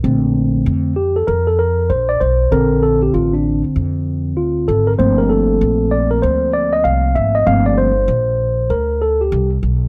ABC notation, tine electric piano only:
X:1
M:4/4
L:1/16
Q:"Swing 16ths" 1/4=97
K:Bb
V:1 name="Tine electric piano"
z6 G A B A B2 c d c2 | B2 A G F D2 z4 z F2 A B | c B A4 d B c2 d e f2 =e _e | f d c6 B2 A G2 z3 |]
V:2 name="Tine electric piano"
[D,A,C]6 z8 z2 | [D,CA]16 | [F,A,B,C]16 | [F,A,B,C]2 z12 z2 |]